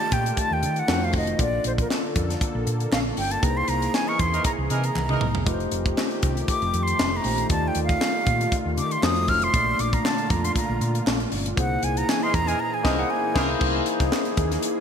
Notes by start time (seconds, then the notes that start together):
Already playing: D#3 A3 D#4 F4 G4 D5 A5
0.00 closed hi-hat
0.12 A#2 G5, kick, closed hi-hat
0.26 closed hi-hat
0.37 A5, kick, closed hi-hat
0.51 D#2 G5
0.63 D#3, closed hi-hat
0.76 F#5, closed hi-hat
0.87 F2 A3 D#4 F4 F#4 A#4, snare, clap
0.94 C5
1.05 F5
1.13 F1, kick, open hi-hat
1.17 D#5
1.27 closed hi-hat
1.38 A#1 D3 A#3 D4 F4 A4 D5, kick, closed hi-hat
1.64 A#1 C5, closed hi-hat
1.78 A#4, kick, closed hi-hat
1.90 snare, clap
2.16 F2, kick, closed hi-hat
2.30 snare, closed hi-hat
2.41 kick, closed hi-hat
2.55 A#1
2.67 A#2, closed hi-hat
2.80 closed hi-hat
2.92 A#1 F5, snare, clap
3.17 G1 G5, open hi-hat
3.31 A5, closed hi-hat
3.41 C2 E3 A#3 D#4 E4 G#4 B4 A#5, kick, closed hi-hat
3.50 C5
3.57 C6
3.68 C2 A#5, closed hi-hat
3.82 closed hi-hat
3.94 G#5, snare, clap
4.07 E3 D#4 A#4 C#6
4.19 E2 C6, kick, closed hi-hat
4.33 E3 D#4 A#4, closed hi-hat
4.44 A#5, kick, closed hi-hat
4.59 C2
4.70 C3 E3 D#4 A#4 G#5, closed hi-hat
4.84 A#5, closed hi-hat
4.95 C2, clap, high tom
5.09 E3 D#4 A#4, mid tom
5.21 C2, mid tom
5.35 floor tom
5.45 F1 D#3 A3 D#4 F4 G4 B4, kick, closed hi-hat
5.54 C5
5.60 closed hi-hat
5.71 F1, closed hi-hat
5.86 kick, closed hi-hat
5.98 snare, clap
6.11 closed hi-hat
6.23 C2, kick, closed hi-hat
6.37 closed hi-hat
6.48 D6, kick, closed hi-hat
6.62 F1, closed hi-hat
6.74 F2, closed hi-hat
6.83 C6
6.87 closed hi-hat
6.99 F1, snare, clap
7.17 A#5
7.24 A#1 A3 D#4 F4 G4 C5, open hi-hat
7.38 closed hi-hat
7.49 D#2 D#3 A3 D#4 F4 G4 D5 A5, kick, closed hi-hat
7.68 G5
7.75 D#2, closed hi-hat
7.84 F5
7.89 kick, snare, closed hi-hat
8.01 snare, clap
8.26 A#2, kick, closed hi-hat
8.41 closed hi-hat
8.52 kick, closed hi-hat
8.66 D#2
8.78 D#3 D6, closed hi-hat
8.91 C6, closed hi-hat
9.02 F2 A3 D#4 F4 F#4 C5 D#6, snare, clap
9.16 closed hi-hat
9.28 F1 F6, kick, open hi-hat
9.42 C6, closed hi-hat
9.53 A#1 A#2 D3 A3 A#3 D4 F4 D5, kick, closed hi-hat
9.79 A#1 D6, closed hi-hat
9.93 A#5, kick, closed hi-hat
10.05 A5, snare, clap
10.18 closed hi-hat
10.30 F2 A#5, kick, closed hi-hat
10.44 C6, closed hi-hat
10.56 A#5, kick, closed hi-hat
10.69 A#1
10.81 A#2, closed hi-hat
10.95 closed hi-hat
11.06 A#1, snare, clap
11.20 closed hi-hat
11.32 G1, open hi-hat
11.46 closed hi-hat
11.56 C2 E3 A#3 D#4 E4 G#4 C5 F#5, kick, closed hi-hat
11.83 C2 G#5, closed hi-hat
11.97 A#5, closed hi-hat
12.09 G#5, snare, clap
12.22 E3 D#4 A#4 C6
12.34 E2 A#5, kick, closed hi-hat
12.47 E3 D#4 A#4 G#5, closed hi-hat
12.60 A#5
12.74 G#5
12.83 C2 E3 A#3 D#4 E4 G#4 A#4 C5, kick, snare, crash
12.99 F#5
13.10 G#5
13.34 C2 E3 A#3 D#4 E4 G#4 A#4 C5, kick, snare, crash
13.59 C2 E3 A#3 D#4 E4 G#4 C5, kick, crash
13.86 closed hi-hat
14.00 C2, kick, snare, closed hi-hat
14.12 snare, clap
14.25 closed hi-hat
14.37 D#2, kick, closed hi-hat
14.51 snare, closed hi-hat
14.63 closed hi-hat